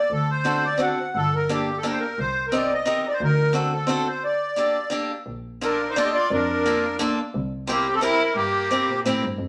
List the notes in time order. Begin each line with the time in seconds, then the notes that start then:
Already playing: D5
0.10 D2 A4
0.31 C5
0.44 C4 D4 F#4 A4
0.64 D5
0.78 C4 D4 F#4 A4 F#5
1.15 G1 A4
1.35 A#4
1.49 A#3 D4 G4 A4
1.77 A4
1.83 A#3 D4 G4 A4 A#4
1.91 C5
2.00 A#4
2.18 C2 C5
2.47 A#4
2.52 C4 D#4 G4 A#4 D5
2.74 D#5
2.85 C4 D#4 G4 A#4
2.90 D#5
3.08 D5
3.13 C5
3.20 D2 A#4
3.53 C4 D4 F#4 A4
3.73 A4
3.87 C4 D4 F#4 A4
4.08 C5
4.24 D5
4.56 A#3 D4 G4 A4
4.90 A#3 D4 G4 A4
5.26 A#1
5.61 A#3 D4 F4 A4 A#4
5.90 D#4 C5
5.96 A#3 D4 F4 A4 D5
6.04 G4 D#5
6.13 F4 D5
6.31 F2 D4 A#4
6.66 A#3 D4 F4 A4
6.99 A#3 D4 F4 A4
7.35 C2
7.67 A#3 C4 E4 G4 A#4
7.92 C4 A4
8.01 C4 E4 G4 A#4
8.35 G2 A#3 G4
8.71 C4 E4 G4 A#4
8.88 A#2
9.05 A2 C4 E4 G4 A#4
9.22 G2
9.39 F2